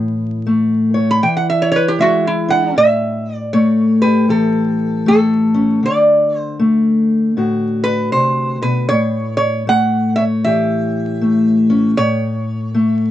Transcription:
Already playing: A2 E3
0.47 A3
0.94 C#5
1.11 B5
1.23 E3 G5
1.37 F#5
1.50 E5
1.62 C#5
1.72 C#5
1.76 B4
1.88 G4
1.99 G#3 F#4 E5
2.27 E4
2.48 D4 F#5
2.76 A2 E5
3.35 D5
3.53 A3 C#5
4.02 G4 B4
4.28 E3 G4 A4
5.06 A3 A4
5.54 C#4
5.83 D3 D5
6.38 C5
6.59 A3
7.37 A2 F#4
7.84 B4
8.12 C3 C5
8.62 B2 B4
8.89 A2 C#5
9.37 C#5
9.67 A3 F#5
10.16 C#5 E5
10.44 E3 G4 E5
11.21 A3
11.70 C#4
11.97 A2 C#5
12.74 A3

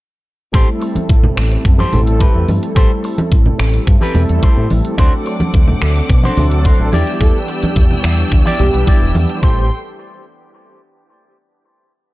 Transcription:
0.53 A1 G3 A3 C4 E4 G4 A4 C5, kick, closed hi-hat
0.80 muted clean electric guitar stroke, open hi-hat
0.95 muted clean electric guitar stroke, muted fingered electric bass stroke, closed hi-hat, high conga
1.09 A1, kick, closed hi-hat
1.23 low conga
1.36 A1, finger snap, muted clean electric guitar stroke, open hi-hat
1.50 muted clean electric guitar stroke, closed hi-hat
1.65 F#2, kick, closed hi-hat
1.78 G4 A4 C5, high conga
1.92 A1 G3 A3 C4 E4 A4, open hi-hat, low conga
2.07 closed hi-hat
2.19 G4 A4 B4, kick, closed hi-hat
2.35 E2
2.48 G2 G3 A3 C4 E4 A4, open hi-hat, high conga
2.63 closed hi-hat
2.75 A1 G3 A3 C4 E4 G4 A4 C5, kick, closed hi-hat
3.03 muted clean electric guitar stroke, open hi-hat
3.17 muted clean electric guitar stroke, muted fingered electric bass stroke, closed hi-hat, high conga
3.32 A1, kick, closed hi-hat
3.46 low conga
3.58 A1, finger snap, muted clean electric guitar stroke, open hi-hat
3.73 muted clean electric guitar stroke, closed hi-hat
3.87 G2, kick, closed hi-hat
4.01 G4 A4 B4, high conga
4.14 E2 G3 A3 C4 E4 A4, open hi-hat, low conga
4.29 E2, closed hi-hat
4.42 G4 A4 C5, kick, closed hi-hat
4.57 A2
4.70 A1 G3 A3 C4 E4 A4, open hi-hat, high conga
4.85 closed hi-hat
4.97 D2 F#3 A3 C4 D4 F#4 A4 C5 F#5 D6, kick, closed hi-hat
5.25 muted clean electric guitar stroke, open hi-hat
5.40 muted clean electric guitar stroke, muted fingered electric bass stroke, closed hi-hat, high conga
5.54 D2, kick, closed hi-hat
5.68 low conga
5.81 D2, finger snap, muted clean electric guitar stroke, open hi-hat
5.95 muted clean electric guitar stroke, closed hi-hat
6.09 B2, kick, closed hi-hat
6.23 D4 F#4 C5, high conga
6.37 D2 F#3 A3 C4 D4 A4, open hi-hat, low conga
6.52 closed hi-hat
6.64 D4 F#4 C5, kick, closed hi-hat
6.79 A1
6.92 E2 E3 G3 B3 D4 E4 G4 D5 G5 E6, open hi-hat, high conga
7.07 closed hi-hat
7.20 E2 E3 G3 B3 D4 G4 A4, kick, closed hi-hat
7.47 muted clean electric guitar stroke, open hi-hat
7.62 muted clean electric guitar stroke, muted fingered electric bass stroke, closed hi-hat, high conga
7.76 E2, kick, closed hi-hat
7.91 low conga
8.03 E2, finger snap, muted clean electric guitar stroke, open hi-hat
8.17 muted clean electric guitar stroke, closed hi-hat
8.32 D2, kick, closed hi-hat
8.45 E4 G4 D5, high conga
8.59 B1 E3 G3 B3 D4 G4, open hi-hat, low conga
8.74 B1, closed hi-hat
8.86 E4 G4 D5, kick, closed hi-hat
9.02 E1
9.15 E2 E3 G3 B3 D4 G4, open hi-hat, high conga
9.29 closed hi-hat
9.41 A1 E3 G3 A3 C4 G4 A4 C5 G5 C6, kick

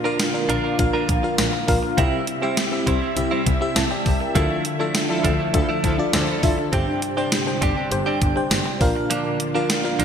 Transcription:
Already playing: A#2 D3 A#3 D4 F4 A#4 F5
0.04 D4 F4 A#4 F5
0.19 muted clean electric guitar stroke, snare, closed hi-hat, tambourine
0.34 D4 F4 A#4 F5, muted clean electric guitar stroke
0.49 A#1 D4 F4 A#4, closed hi-hat
0.64 D4 F4 A#4
0.79 A#1 D4 F4 A#4 F5, muted clean electric guitar stroke, kick, closed hi-hat
0.93 D4 F4 A#4
1.08 A#1, muted clean electric guitar stroke, kick, closed hi-hat
1.23 D4 F4 A#4 F5, muted clean electric guitar stroke
1.38 A#1, muted clean electric guitar stroke, snare, closed hi-hat, tambourine
1.53 muted clean electric guitar stroke
1.67 A#1 D4 F4 A#4 F5, kick, open hi-hat
1.83 muted clean electric guitar stroke
1.97 C2 C3 G3 C4 E4 G4 E5, kick, closed hi-hat
2.27 muted clean electric guitar stroke, closed hi-hat
2.42 G3 C4 E4 G4 E5
2.57 muted clean electric guitar stroke, snare, closed hi-hat, tambourine
2.72 C4 E4 G4 E5, muted clean electric guitar stroke
2.87 C2 G3 C4 E4, kick, closed hi-hat
3.02 G3 C4 E4
3.16 C2 C4 E4 G4 E5, muted clean electric guitar stroke, closed hi-hat
3.31 G3 C4 E4
3.46 C2, muted clean electric guitar stroke, kick, closed hi-hat
3.61 C4 E4 G4 E5, muted clean electric guitar stroke
3.76 C2 E5 A5, muted clean electric guitar stroke, snare, closed hi-hat, tambourine
3.91 D5 G5, muted clean electric guitar stroke
4.06 C2, kick, open hi-hat
4.20 A#4 E5, muted clean electric guitar stroke
4.35 D2 D3 F3 A3 D4 E4 F4 A4 E5, kick, closed hi-hat
4.65 muted clean electric guitar stroke, closed hi-hat
4.79 F3 A3 D4 E4 F4 A4 E5
4.94 muted clean electric guitar stroke, snare, closed hi-hat, tambourine
5.09 F3 D4 E4 F4 A4 E5, muted clean electric guitar stroke
5.24 D2 F3 A3 E4, kick, closed hi-hat
5.39 F3 A3 E4
5.53 D2 F3 D4 E4 F4 A4 E5, muted clean electric guitar stroke, kick, closed hi-hat
5.69 F3 A3 E4
5.83 D2 F3 A3 E4 A4, kick, closed hi-hat
5.98 D4 F4 A4 D5, muted clean electric guitar stroke
6.13 D2 F3 E4 A4, muted clean electric guitar stroke, snare, closed hi-hat, tambourine
6.28 muted clean electric guitar stroke
6.42 F1 D4 F4 A4 E5, kick, open hi-hat
6.58 muted clean electric guitar stroke
6.72 G1 G2 C3 G3 C4 D4 G4 C5 G5, kick, closed hi-hat
7.02 muted clean electric guitar stroke, closed hi-hat
7.17 C4 D4 G4 C5 G5
7.32 muted clean electric guitar stroke, snare, closed hi-hat, tambourine
7.47 D4 G4 C5 G5, muted clean electric guitar stroke
7.62 G1 C4 D4 G4, kick, closed hi-hat
7.76 C4 D4 G4
7.91 G1 D4 G4 C5 G5, muted clean electric guitar stroke, closed hi-hat
8.06 C4 D4 G4
8.21 G1, muted clean electric guitar stroke, kick, closed hi-hat
8.36 D4 G4 C5 G5, muted clean electric guitar stroke
8.51 G1, muted clean electric guitar stroke, snare, closed hi-hat, tambourine
8.66 muted clean electric guitar stroke
8.80 A#1 A#2 D3 A#3 D4 F4 A#4 F5, kick, open hi-hat
8.96 muted clean electric guitar stroke
9.10 F3 A#3 D4, closed hi-hat
9.40 muted clean electric guitar stroke, closed hi-hat
9.54 F3 A#3 D4 F4 A#4 F5
9.70 muted clean electric guitar stroke, snare, closed hi-hat, tambourine
9.84 D4 F4 A#4 F5, muted clean electric guitar stroke
9.99 A#1 F3 A#3 D4, closed hi-hat

